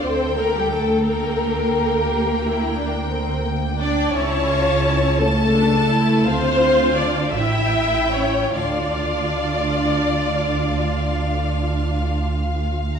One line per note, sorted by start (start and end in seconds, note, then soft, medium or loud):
0.02 4.12 D2 medium
0.02 0.37 C4 medium
0.02 2.07 A4 medium
0.02 0.37 C5 medium
0.02 1.06 G5 medium
0.37 0.54 A#3 medium
0.37 0.54 A#4 medium
0.54 0.72 G3 medium
0.54 0.72 G4 medium
0.71 1.06 A3 medium
0.71 1.06 A4 medium
1.06 3.47 A#3 medium
1.06 3.42 A#4 medium
1.06 4.12 G5 medium
2.11 2.46 G4 medium
2.46 2.79 E4 medium
2.79 3.12 D4 medium
3.12 3.45 C4 medium
3.46 3.80 A#3 medium
3.80 4.15 D4 medium
3.80 4.13 D4 medium
3.80 4.13 D5 loud
4.14 6.26 C#2 medium
4.14 5.20 C#4 medium
4.14 4.50 E4 medium
4.14 5.20 C#5 loud
4.14 5.18 A5 medium
4.50 4.85 F4 medium
4.84 5.20 E4 medium
5.19 6.26 A3 loud
5.19 5.55 C#4 medium
5.19 6.26 A4 loud
5.19 6.24 A5 medium
5.55 5.90 D4 medium
5.90 6.26 E4 medium
6.25 7.33 D2 medium
6.25 6.98 C4 medium
6.25 7.35 F4 medium
6.25 6.99 C5 loud
6.25 7.36 F5 medium
6.98 7.36 D4 medium
6.98 7.35 D5 medium
7.33 8.54 A1 medium
7.33 8.54 E4 medium
7.33 8.14 E4 medium
7.33 8.11 E5 loud
7.33 8.53 G5 medium
8.12 8.54 C#4 medium
8.12 8.53 C#5 medium
8.53 12.99 D2 medium
8.53 12.14 D4 medium
8.53 12.72 F4 medium
8.53 12.17 D5 medium
8.53 12.93 F5 medium